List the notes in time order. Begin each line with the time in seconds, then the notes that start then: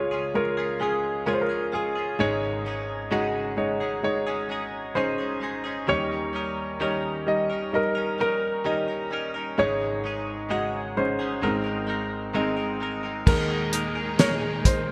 Already playing: C#2 C#3 G#3 C#4 F4 C#5
0.11 C#4 F4 G#4
0.34 G#3 F4 A#4 C#5
0.57 C#4 F4 G#4
0.80 G#3 C#4 F4 G#4
1.26 C#3 G#3 C#4 F4 G#4 A#4 C#5
1.33 C5
1.41 A#4
1.49 C#4 F4 G#4
1.72 G#3 C#4 F4 G#4
1.95 C#4 F4 G#4
2.19 G#1 G#2 C#3 G#3 C#4 D#4 G#4 C#5
2.65 G#3 C#4 D#4 G#4
3.11 G#2 C#3 G#3 C#4 D#4 F#4 G#4
3.57 G#3 D#4 C#5
3.80 G#3 C#4 D#4 G#4
4.03 G#3 D#4 C#5
4.27 G#3 C#4 D#4 G#4
4.49 G#3 C#4 D#4 G#4
4.95 G#2 C#3 G#3 C#4 D#4 G#4 C5
5.18 G#3 C#4 D#4 G#4
5.40 G#3 C#4 D#4 G#4
5.64 G#3 C#4 D#4 G#4
5.87 D#2 D#3 G3 C#4 D#4 A#4 C#5
6.33 G3 C#4 D#4 A#4
6.80 D#3 G3 C#4 D#4 A#4 C#5
7.27 G3 D#4 D#5
7.50 C#4 D#4 A#4
7.73 G3 D#4 A#4 D#5
7.95 C#4 D#4 A#4
8.18 G3 C#4 D#4 A#4
8.64 D#3 G3 C#4 D#4 A#4 D#5
8.88 C#4 D#4 A#4
9.11 G3 C#4 D#4 A#4
9.34 C#4 D#4 A#4
9.58 G#1 G#2 C#3 G#3 C#4 D#4 G#4 C#5
10.04 G#3 C#4 D#4 G#4
10.49 G#2 C#3 G#3 C#4 D#4 F#4 G#4
10.97 G#3 C#4 D#4 C5
11.19 G#3 C#4 D#4 G#4
11.42 G#1 G#2 D#3 G#3 C4 D#4 A#4
11.64 G#3 C4 D#4 A#4
11.87 G#3 C4 D#4 A#4
12.33 G#2 D#3 G#3 C4 D#4 A#4
12.57 G#3 C4 D#4 A#4
12.80 G#3 C4 D#4 A#4
13.03 G#3 C4 D#4 A#4
13.26 D#2 A#2 D#3 G#3 D#4 G#4 A#4, kick, crash
13.49 D#4 G#4 A#4
13.72 G#3 D#4 G#4 A#4, closed hi-hat
13.95 D#4 G#4 A#4
14.18 D#3 G#3 D#4 G#4 A#4 C#5, snare, closed hi-hat
14.65 C5, kick, closed hi-hat